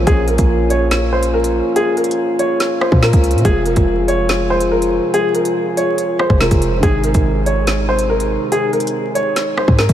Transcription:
Already playing: french horn section A#3 C#4 F4
0.02 felt piano F3 A#3
0.07 808-style bass A#1, felt piano C#4 A#4, grand piano G#4, kick, closed hi-hat
0.12 felt piano C#5
0.28 grand piano A#4, closed hi-hat
0.38 808-style bass A#1, kick, closed hi-hat
0.70 grand piano C#5, closed hi-hat
0.91 snare, closed hi-hat
1.13 grand piano C5
1.23 closed hi-hat
1.34 grand piano A#4
1.44 closed hi-hat
1.76 grand piano G#4, closed hi-hat
1.97 grand piano A#4, closed hi-hat
2.04 closed hi-hat
2.11 closed hi-hat
2.39 grand piano C#5, closed hi-hat
2.60 snare, closed hi-hat
2.81 grand piano C5, cross-stick
2.92 808-style bass A#2, kick
3.03 grand piano A#4, snare
3.13 808-style bass C#2, kick, closed hi-hat
3.24 closed hi-hat
3.31 808-style bass A#2, closed hi-hat
3.38 felt piano C3, closed hi-hat
3.43 808-style bass F1, felt piano F3 G#3, french horn section F3 G#4, grand piano G#4, kick, closed hi-hat
3.48 felt piano F4 G#4
3.66 grand piano A#4, closed hi-hat
3.76 808-style bass F1, kick, closed hi-hat
4.08 grand piano C#5, closed hi-hat
4.29 snare, closed hi-hat
4.50 grand piano C5
4.61 closed hi-hat
4.72 grand piano A#4
4.82 closed hi-hat
5.14 grand piano G#4, closed hi-hat
5.35 grand piano A#4, closed hi-hat
5.45 closed hi-hat
5.77 grand piano C#5, closed hi-hat
5.98 closed hi-hat
6.19 grand piano C5, cross-stick
6.30 808-style bass F1, kick
6.38 felt piano C3 F3 G#3 F4, grand piano A#4, snare
6.43 felt piano G#4
6.51 808-style bass F1, kick, closed hi-hat
6.62 closed hi-hat
6.78 felt piano C3 D#3
6.83 808-style bass G#1, french horn section C3 D#4, felt piano G#3 D#4, grand piano G#4, kick, closed hi-hat
6.88 felt piano G#4
7.04 grand piano A#4, closed hi-hat
7.14 808-style bass G#1, kick, closed hi-hat
7.46 grand piano C#5, closed hi-hat
7.67 snare, closed hi-hat
7.89 grand piano C5
7.99 closed hi-hat
8.10 grand piano A#4
8.20 closed hi-hat
8.52 grand piano G#4, closed hi-hat
8.73 grand piano A#4, closed hi-hat
8.80 closed hi-hat
8.87 closed hi-hat
9.15 grand piano C#5, closed hi-hat
9.36 snare, closed hi-hat
9.58 grand piano C5, cross-stick
9.68 808-style bass G#2, kick
9.79 grand piano A#4, snare
9.89 808-style bass C2, kick, closed hi-hat

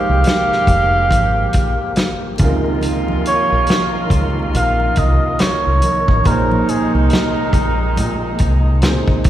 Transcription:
Already playing: horn section D#3 C4 G4, upright piano G#3 D#4 F4 G4 A#4 C5, tonewheel organ A#3 G4, muted trumpet F5
0.09 fingered electric bass C2
0.24 snare, closed hi-hat, high conga
0.52 snare
0.67 fingered electric bass F1, kick, closed hi-hat, muted conga, low conga
1.11 fingered electric bass G#1, kick, closed hi-hat, muted conga, high conga
1.53 fingered electric bass A#1, kick, closed hi-hat
1.96 snare, closed hi-hat
2.38 fingered electric bass C#2, upright piano C3 C#3 D#4, horn section C3 A#3 F4, tonewheel organ D#3 D#4 F4 A#4, kick, closed hi-hat, high conga
2.43 upright piano F4 A#4
2.66 low conga
2.81 closed hi-hat, muted conga, low conga
3.08 high conga
3.25 muted trumpet C#5, closed hi-hat
3.52 fingered electric bass A#1
3.67 snare, closed hi-hat, muted conga, high conga
4.10 fingered electric bass C#2, kick, closed hi-hat, muted conga, low conga
4.54 fingered electric bass A#1, muted trumpet F5, closed hi-hat, muted conga, high conga
4.96 fingered electric bass C2, muted trumpet D#5, kick, closed hi-hat
5.39 muted trumpet C#5, muted fingered electric bass stroke, snare, closed hi-hat
5.67 fingered electric bass C2
5.82 closed hi-hat, muted conga, high conga
6.08 fingered electric bass A1, kick, low conga
6.24 fingered electric bass A#1, upright piano A#2 A#3 D#4 C#5, horn section C3 G#3 D#4, tonewheel organ G#3 A#3 D#4, muted trumpet A#4, kick, closed hi-hat, muted conga, low conga
6.29 upright piano G#4 C5
6.51 high conga
6.68 muted trumpet G#4, closed hi-hat, muted conga
6.94 fingered electric bass C2, muted trumpet A#4
7.10 snare, closed hi-hat, muted conga, high conga
7.53 fingered electric bass A#1, kick, closed hi-hat, low conga
7.96 fingered electric bass A#2, closed hi-hat, high conga
8.38 fingered electric bass C2, kick, closed hi-hat
8.82 fingered electric bass C#2, upright piano A#2 A#3 C4 D#4 G#4 C5, snare, closed hi-hat, muted conga
8.90 upright piano C#3
9.08 kick
9.24 fingered electric bass A1, kick, closed hi-hat, muted conga, high conga

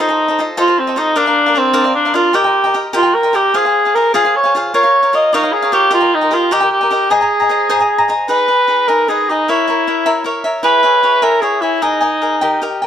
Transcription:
0.00 cor anglais D#4, cavaquinho D#5
0.09 cavaquinho A4 C5 D#5
0.28 cavaquinho A4 C5 D#5
0.39 cavaquinho F4 A4 C5 D#5
0.57 cavaquinho F4 A4 C5 D#5, cor anglais F4
0.67 cavaquinho A4 C5 D#5
0.79 cor anglais C4
0.87 cavaquinho A4 C5 D#5
0.96 cor anglais D#4, cavaquinho F4 A4 C5 D#5
1.16 cavaquinho D4 A#4 D5 F5, cor anglais D4
1.26 cavaquinho A#4 D5 F5
1.46 cavaquinho A#4 D5 F5
1.54 cor anglais C4, cavaquinho D4 A#4 D5 F5
1.73 cavaquinho D4 A#4 D5 F5
1.84 cavaquinho A#4 D5 F5
1.95 cor anglais D4
2.05 cavaquinho A#4 D5 F5
2.14 cavaquinho D4 A#4 D5 F5, cor anglais F4
2.33 cavaquinho G4 A#4 D#5 G5, cor anglais G4
2.44 cavaquinho A#4 D#5 G5
2.64 cavaquinho A#4 D#5 G5
2.74 cavaquinho G4 A#4 D#5 G5
2.93 cor anglais F4, cavaquinho G4 A#4 D#5 G5
3.03 cavaquinho A#4 D#5 G5
3.14 cor anglais A#4
3.23 cavaquinho A#4 D#5 G5
3.33 cavaquinho G4 A#4 D#5 G5, cor anglais G4
3.54 cavaquinho F4 G#4 C5 F5, cor anglais G#4
3.65 cavaquinho G#4 C5 F5
3.85 cavaquinho G#4 C5 F5
3.95 cavaquinho F4 G#4 C5 F5, cor anglais A#4
4.14 cavaquinho F4 G#4 C5 F5, cor anglais G#4
4.25 cavaquinho G#4 C5 F5
4.36 cor anglais C#5
4.44 cavaquinho G#4 C5 F5
4.55 cavaquinho F4 G#4 C5 F5
4.74 cavaquinho F4 A#4 C#5 F5, cor anglais C#5
4.83 cavaquinho A#4 C#5 F5
5.02 cavaquinho A#4 C#5 F5
5.13 cavaquinho F4 A#4 C#5 F5, cor anglais D#5
5.33 cor anglais D#4, cavaquinho F4 A#4 C#5 F5
5.43 cavaquinho A#4 C#5 F5
5.52 cor anglais G#4
5.62 cavaquinho A#4 C#5 F5
5.72 cavaquinho F4 A#4 C#5 F5, cor anglais G4
5.91 cor anglais F4, cavaquinho G4 A#4 D#5 G5
6.00 cavaquinho A#4 D#5 G5
6.15 cor anglais D#4
6.21 cavaquinho A#4 D#5 G5
6.31 cor anglais F4, cavaquinho G4 A#4 D#5 G5
6.51 cavaquinho G4 A#4 D#5 G5, cor anglais G4
6.60 cavaquinho A#4 D#5 G5
6.71 cor anglais G4
6.81 cavaquinho A#4 D#5 G5
6.90 cavaquinho G4 A#4 D#5 G5
7.10 cor anglais G#4, cavaquinho C5 D#5 G#5 A#5
7.21 cavaquinho D#5 G#5 A#5
7.40 cavaquinho D#5 G#5 A#5
7.49 cavaquinho C5 D#5 G#5 A#5
7.70 cavaquinho C5 D#5 G#5 A#5
7.79 cavaquinho D#5 G#5 A#5
7.98 cavaquinho D#5 G#5 A#5
8.08 cavaquinho C5 D#5 G#5 A#5
8.28 cavaquinho D#4 G#4 B4 D#5, cor anglais B4
8.48 cavaquinho G#4 B4 D#5
8.67 cavaquinho D#4 G#4 B4 D#5
8.88 cavaquinho D#4 G#4 B4 D#5, cor anglais A#4
9.08 cavaquinho D#4 G#4 B4 D#5, cor anglais G#4
9.29 cor anglais D#4, cavaquinho G#4 B4 D#5
9.48 cavaquinho E4 A#4 C#5 E5, cor anglais E4
9.67 cavaquinho A#4 C#5 E5
9.87 cavaquinho E4 A#4 C#5 E5
10.06 cavaquinho E4 A#4 C#5 E5
10.24 cavaquinho E4 A#4 C#5 E5
10.44 cavaquinho A#4 C#5 E5
10.63 cavaquinho E4 G#4 C#5 E5, cor anglais B4
10.83 cavaquinho G#4 C#5 E5
11.03 cavaquinho E4 G#4 C#5 E5
11.22 cavaquinho E4 G#4 C#5 E5, cor anglais A#4
11.41 cavaquinho E4 G#4 C#5 E5, cor anglais G#4
11.61 cor anglais E4, cavaquinho G#4 C#5 E5
11.82 cor anglais D#4, cavaquinho G#4 A#4 D#5 G#5
12.01 cavaquinho A#4 D#5 G#5
12.22 cavaquinho G#4 A#4 D#5 G#5
12.41 cavaquinho G4 A#4 D#5 G5
12.62 cavaquinho G4 A#4 D#5 G5
12.82 cavaquinho A#4 D#5 G5

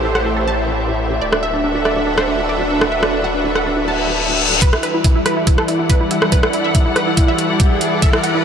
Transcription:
Already playing: wobble bass A1, supersaw synth A3 E4 G4 C5, string section G4 C5 E5
0.05 synth pluck A4
0.15 synth pluck F#5, cross-stick
0.26 synth pluck A4
0.36 synth pluck A4
0.48 synth pluck A5
1.21 wobble bass D1, supersaw synth D4 A4 E5 F#5, string section F#4, synth pluck D5
1.33 synth pluck D4, cross-stick
1.43 synth pluck E5
1.54 synth pluck D4
1.60 string section B4
1.64 synth pluck D4
1.75 synth pluck D4
1.85 synth pluck D5, cross-stick
1.96 synth pluck D4
2.07 synth pluck D4
2.18 synth pluck C5, cross-stick
2.28 synth pluck D4
2.39 synth pluck D4
2.49 synth pluck D5
2.60 synth pluck D4
2.70 synth pluck D4
2.81 synth pluck D4, cross-stick
2.92 synth pluck E5
3.03 synth pluck D4, cross-stick
3.13 synth pluck D4
3.24 synth pluck F#5
3.34 synth pluck D4
3.45 synth pluck D4
3.55 synth pluck F#5, cross-stick
3.67 synth pluck D4
3.77 synth pluck D4, reverse cymbal
3.88 synth pluck A5
4.62 supersaw synth E3 G3 E4 D5, string section E4, synth pluck B4, kick, closed hi-hat, riser
4.73 synth pluck E4, cross-stick
4.83 synth pluck B4, closed hi-hat
4.88 string section A4 D5
4.94 synth pluck E4
5.03 synth pluck E4, string section F#5, kick, closed hi-hat
5.15 synth pluck E4
5.26 synth pluck B4, cross-stick, closed hi-hat
5.37 synth pluck E4
5.47 synth pluck E4, kick, closed hi-hat
5.58 synth pluck A4, cross-stick
5.68 synth pluck E4, closed hi-hat
5.79 synth pluck E4
5.90 synth pluck B4, kick, closed hi-hat
6.01 synth pluck E4
6.11 synth pluck E4, closed hi-hat
6.22 synth pluck E4, cross-stick
6.32 synth pluck B4, kick, closed hi-hat
6.43 synth pluck E4, cross-stick
6.53 synth pluck E4, closed hi-hat
6.64 synth pluck E5
6.75 synth pluck E4, kick, closed hi-hat
6.86 synth pluck E4
6.96 synth pluck B4, cross-stick, closed hi-hat
7.07 synth pluck E4
7.17 synth pluck E4, kick, closed hi-hat
7.28 synth pluck E5
7.38 closed hi-hat
7.60 kick, closed hi-hat
7.81 closed hi-hat
8.02 synth pluck E5, kick, closed hi-hat
8.13 synth pluck E4, cross-stick
8.24 synth pluck F#5, closed hi-hat
8.35 synth pluck E4

